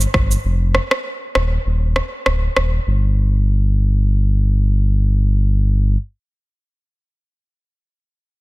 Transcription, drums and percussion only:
0, 0, Header, 1, 2, 480
1, 0, Start_track
1, 0, Tempo, 606061
1, 352, Time_signature, 4, 2, 24, 8
1, 6658, End_track
2, 0, Start_track
2, 0, Title_t, "Drums"
2, 5, Note_on_c, 9, 82, 55
2, 84, Note_off_c, 9, 82, 0
2, 112, Note_on_c, 9, 37, 89
2, 113, Note_on_c, 9, 36, 89
2, 191, Note_off_c, 9, 37, 0
2, 192, Note_off_c, 9, 36, 0
2, 247, Note_on_c, 9, 82, 49
2, 326, Note_off_c, 9, 82, 0
2, 591, Note_on_c, 9, 37, 90
2, 670, Note_off_c, 9, 37, 0
2, 723, Note_on_c, 9, 37, 96
2, 802, Note_off_c, 9, 37, 0
2, 1071, Note_on_c, 9, 37, 98
2, 1150, Note_off_c, 9, 37, 0
2, 1552, Note_on_c, 9, 37, 90
2, 1631, Note_off_c, 9, 37, 0
2, 1791, Note_on_c, 9, 37, 94
2, 1870, Note_off_c, 9, 37, 0
2, 2032, Note_on_c, 9, 37, 91
2, 2111, Note_off_c, 9, 37, 0
2, 6658, End_track
0, 0, End_of_file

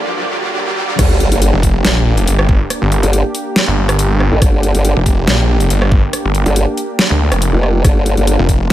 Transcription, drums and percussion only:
0, 0, Header, 1, 2, 480
1, 0, Start_track
1, 0, Key_signature, -2, "minor"
1, 0, Tempo, 428571
1, 1107, Time_signature, 4, 2, 24, 8
1, 9775, End_track
2, 0, Start_track
2, 0, Title_t, "Drums"
2, 1107, Note_on_c, 9, 36, 115
2, 1108, Note_on_c, 9, 37, 52
2, 1108, Note_on_c, 9, 42, 81
2, 1108, Note_on_c, 9, 49, 103
2, 1219, Note_off_c, 9, 36, 0
2, 1220, Note_off_c, 9, 37, 0
2, 1220, Note_off_c, 9, 42, 0
2, 1220, Note_off_c, 9, 49, 0
2, 1348, Note_on_c, 9, 42, 55
2, 1460, Note_off_c, 9, 42, 0
2, 1476, Note_on_c, 9, 42, 56
2, 1587, Note_off_c, 9, 42, 0
2, 1587, Note_on_c, 9, 42, 82
2, 1699, Note_off_c, 9, 42, 0
2, 1827, Note_on_c, 9, 36, 64
2, 1827, Note_on_c, 9, 42, 54
2, 1939, Note_off_c, 9, 36, 0
2, 1939, Note_off_c, 9, 42, 0
2, 2067, Note_on_c, 9, 38, 121
2, 2067, Note_on_c, 9, 42, 88
2, 2179, Note_off_c, 9, 38, 0
2, 2179, Note_off_c, 9, 42, 0
2, 2436, Note_on_c, 9, 42, 56
2, 2547, Note_off_c, 9, 42, 0
2, 2547, Note_on_c, 9, 42, 82
2, 2659, Note_off_c, 9, 42, 0
2, 2676, Note_on_c, 9, 37, 82
2, 2787, Note_on_c, 9, 36, 103
2, 2788, Note_off_c, 9, 37, 0
2, 2899, Note_off_c, 9, 36, 0
2, 3027, Note_on_c, 9, 37, 53
2, 3027, Note_on_c, 9, 42, 83
2, 3139, Note_off_c, 9, 37, 0
2, 3139, Note_off_c, 9, 42, 0
2, 3268, Note_on_c, 9, 42, 52
2, 3380, Note_off_c, 9, 42, 0
2, 3395, Note_on_c, 9, 42, 57
2, 3507, Note_off_c, 9, 42, 0
2, 3507, Note_on_c, 9, 42, 84
2, 3619, Note_off_c, 9, 42, 0
2, 3747, Note_on_c, 9, 42, 56
2, 3859, Note_off_c, 9, 42, 0
2, 3987, Note_on_c, 9, 38, 127
2, 3987, Note_on_c, 9, 42, 83
2, 4099, Note_off_c, 9, 38, 0
2, 4099, Note_off_c, 9, 42, 0
2, 4356, Note_on_c, 9, 37, 74
2, 4356, Note_on_c, 9, 42, 56
2, 4468, Note_off_c, 9, 37, 0
2, 4468, Note_off_c, 9, 42, 0
2, 4468, Note_on_c, 9, 42, 83
2, 4580, Note_off_c, 9, 42, 0
2, 4707, Note_on_c, 9, 37, 60
2, 4819, Note_off_c, 9, 37, 0
2, 4947, Note_on_c, 9, 36, 125
2, 4948, Note_on_c, 9, 37, 49
2, 4948, Note_on_c, 9, 42, 77
2, 5059, Note_off_c, 9, 36, 0
2, 5060, Note_off_c, 9, 37, 0
2, 5060, Note_off_c, 9, 42, 0
2, 5188, Note_on_c, 9, 42, 54
2, 5300, Note_off_c, 9, 42, 0
2, 5316, Note_on_c, 9, 42, 54
2, 5428, Note_off_c, 9, 42, 0
2, 5428, Note_on_c, 9, 42, 81
2, 5540, Note_off_c, 9, 42, 0
2, 5667, Note_on_c, 9, 36, 68
2, 5668, Note_on_c, 9, 42, 53
2, 5779, Note_off_c, 9, 36, 0
2, 5780, Note_off_c, 9, 42, 0
2, 5908, Note_on_c, 9, 38, 127
2, 5908, Note_on_c, 9, 42, 82
2, 6020, Note_off_c, 9, 38, 0
2, 6020, Note_off_c, 9, 42, 0
2, 6276, Note_on_c, 9, 42, 52
2, 6388, Note_off_c, 9, 42, 0
2, 6388, Note_on_c, 9, 42, 80
2, 6500, Note_off_c, 9, 42, 0
2, 6516, Note_on_c, 9, 37, 75
2, 6627, Note_on_c, 9, 36, 117
2, 6628, Note_off_c, 9, 37, 0
2, 6739, Note_off_c, 9, 36, 0
2, 6868, Note_on_c, 9, 37, 52
2, 6868, Note_on_c, 9, 42, 81
2, 6980, Note_off_c, 9, 37, 0
2, 6980, Note_off_c, 9, 42, 0
2, 7107, Note_on_c, 9, 42, 51
2, 7219, Note_off_c, 9, 42, 0
2, 7235, Note_on_c, 9, 42, 49
2, 7347, Note_off_c, 9, 42, 0
2, 7347, Note_on_c, 9, 42, 76
2, 7459, Note_off_c, 9, 42, 0
2, 7588, Note_on_c, 9, 42, 53
2, 7700, Note_off_c, 9, 42, 0
2, 7827, Note_on_c, 9, 38, 121
2, 7827, Note_on_c, 9, 42, 84
2, 7939, Note_off_c, 9, 38, 0
2, 7939, Note_off_c, 9, 42, 0
2, 8195, Note_on_c, 9, 37, 75
2, 8195, Note_on_c, 9, 42, 52
2, 8307, Note_off_c, 9, 37, 0
2, 8307, Note_off_c, 9, 42, 0
2, 8308, Note_on_c, 9, 42, 78
2, 8420, Note_off_c, 9, 42, 0
2, 8548, Note_on_c, 9, 37, 60
2, 8660, Note_off_c, 9, 37, 0
2, 8787, Note_on_c, 9, 36, 122
2, 8787, Note_on_c, 9, 37, 53
2, 8787, Note_on_c, 9, 42, 75
2, 8899, Note_off_c, 9, 36, 0
2, 8899, Note_off_c, 9, 37, 0
2, 8899, Note_off_c, 9, 42, 0
2, 9027, Note_on_c, 9, 42, 53
2, 9139, Note_off_c, 9, 42, 0
2, 9155, Note_on_c, 9, 42, 51
2, 9266, Note_off_c, 9, 42, 0
2, 9266, Note_on_c, 9, 42, 79
2, 9378, Note_off_c, 9, 42, 0
2, 9507, Note_on_c, 9, 36, 62
2, 9507, Note_on_c, 9, 42, 51
2, 9619, Note_off_c, 9, 36, 0
2, 9619, Note_off_c, 9, 42, 0
2, 9775, End_track
0, 0, End_of_file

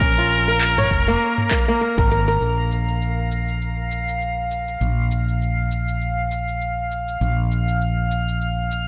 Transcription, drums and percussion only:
0, 0, Header, 1, 2, 480
1, 0, Start_track
1, 0, Key_signature, -5, "minor"
1, 0, Tempo, 600000
1, 9, Time_signature, 4, 2, 24, 8
1, 7102, End_track
2, 0, Start_track
2, 0, Title_t, "Drums"
2, 7, Note_on_c, 9, 36, 105
2, 12, Note_on_c, 9, 82, 29
2, 87, Note_off_c, 9, 36, 0
2, 92, Note_off_c, 9, 82, 0
2, 251, Note_on_c, 9, 82, 72
2, 331, Note_off_c, 9, 82, 0
2, 386, Note_on_c, 9, 82, 42
2, 466, Note_off_c, 9, 82, 0
2, 488, Note_on_c, 9, 39, 79
2, 493, Note_on_c, 9, 82, 32
2, 568, Note_off_c, 9, 39, 0
2, 573, Note_off_c, 9, 82, 0
2, 623, Note_on_c, 9, 45, 81
2, 703, Note_off_c, 9, 45, 0
2, 728, Note_on_c, 9, 36, 58
2, 733, Note_on_c, 9, 82, 70
2, 808, Note_off_c, 9, 36, 0
2, 813, Note_off_c, 9, 82, 0
2, 867, Note_on_c, 9, 82, 39
2, 947, Note_off_c, 9, 82, 0
2, 976, Note_on_c, 9, 82, 31
2, 1056, Note_off_c, 9, 82, 0
2, 1104, Note_on_c, 9, 45, 64
2, 1184, Note_off_c, 9, 45, 0
2, 1208, Note_on_c, 9, 39, 73
2, 1209, Note_on_c, 9, 36, 98
2, 1213, Note_on_c, 9, 82, 70
2, 1288, Note_off_c, 9, 39, 0
2, 1289, Note_off_c, 9, 36, 0
2, 1293, Note_off_c, 9, 82, 0
2, 1347, Note_on_c, 9, 82, 42
2, 1427, Note_off_c, 9, 82, 0
2, 1454, Note_on_c, 9, 82, 33
2, 1534, Note_off_c, 9, 82, 0
2, 1583, Note_on_c, 9, 36, 107
2, 1663, Note_off_c, 9, 36, 0
2, 1693, Note_on_c, 9, 82, 71
2, 1773, Note_off_c, 9, 82, 0
2, 1827, Note_on_c, 9, 82, 43
2, 1907, Note_off_c, 9, 82, 0
2, 1934, Note_on_c, 9, 82, 25
2, 2014, Note_off_c, 9, 82, 0
2, 2172, Note_on_c, 9, 82, 65
2, 2252, Note_off_c, 9, 82, 0
2, 2307, Note_on_c, 9, 82, 36
2, 2387, Note_off_c, 9, 82, 0
2, 2415, Note_on_c, 9, 82, 28
2, 2495, Note_off_c, 9, 82, 0
2, 2654, Note_on_c, 9, 82, 63
2, 2734, Note_off_c, 9, 82, 0
2, 2788, Note_on_c, 9, 82, 36
2, 2868, Note_off_c, 9, 82, 0
2, 2894, Note_on_c, 9, 82, 26
2, 2974, Note_off_c, 9, 82, 0
2, 3133, Note_on_c, 9, 82, 69
2, 3213, Note_off_c, 9, 82, 0
2, 3267, Note_on_c, 9, 82, 38
2, 3347, Note_off_c, 9, 82, 0
2, 3372, Note_on_c, 9, 82, 30
2, 3452, Note_off_c, 9, 82, 0
2, 3610, Note_on_c, 9, 82, 61
2, 3690, Note_off_c, 9, 82, 0
2, 3745, Note_on_c, 9, 82, 38
2, 3825, Note_off_c, 9, 82, 0
2, 3851, Note_on_c, 9, 82, 28
2, 3931, Note_off_c, 9, 82, 0
2, 4091, Note_on_c, 9, 82, 71
2, 4171, Note_off_c, 9, 82, 0
2, 4228, Note_on_c, 9, 82, 39
2, 4308, Note_off_c, 9, 82, 0
2, 4335, Note_on_c, 9, 82, 32
2, 4415, Note_off_c, 9, 82, 0
2, 4572, Note_on_c, 9, 82, 61
2, 4652, Note_off_c, 9, 82, 0
2, 4705, Note_on_c, 9, 82, 36
2, 4785, Note_off_c, 9, 82, 0
2, 4812, Note_on_c, 9, 82, 28
2, 4892, Note_off_c, 9, 82, 0
2, 5050, Note_on_c, 9, 82, 67
2, 5130, Note_off_c, 9, 82, 0
2, 5185, Note_on_c, 9, 82, 39
2, 5265, Note_off_c, 9, 82, 0
2, 5292, Note_on_c, 9, 82, 31
2, 5372, Note_off_c, 9, 82, 0
2, 5533, Note_on_c, 9, 82, 63
2, 5613, Note_off_c, 9, 82, 0
2, 5667, Note_on_c, 9, 82, 42
2, 5747, Note_off_c, 9, 82, 0
2, 5772, Note_on_c, 9, 82, 28
2, 5852, Note_off_c, 9, 82, 0
2, 6014, Note_on_c, 9, 82, 69
2, 6094, Note_off_c, 9, 82, 0
2, 6146, Note_on_c, 9, 82, 40
2, 6226, Note_off_c, 9, 82, 0
2, 6253, Note_on_c, 9, 82, 30
2, 6333, Note_off_c, 9, 82, 0
2, 6491, Note_on_c, 9, 82, 63
2, 6571, Note_off_c, 9, 82, 0
2, 6627, Note_on_c, 9, 82, 38
2, 6707, Note_off_c, 9, 82, 0
2, 6732, Note_on_c, 9, 82, 30
2, 6812, Note_off_c, 9, 82, 0
2, 6973, Note_on_c, 9, 82, 67
2, 7053, Note_off_c, 9, 82, 0
2, 7102, End_track
0, 0, End_of_file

